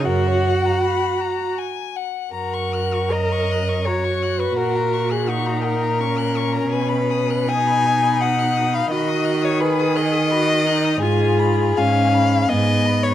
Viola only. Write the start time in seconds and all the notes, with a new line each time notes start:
0.06 F#4
2.34 A#4
3.87 F#4
5.28 D#4
6.00 C#4
7.48 D#4
8.91 F#4
9.61 G#4
10.31 F#4
10.67 D#4
11.02 F4
11.78 C#4
12.49 B3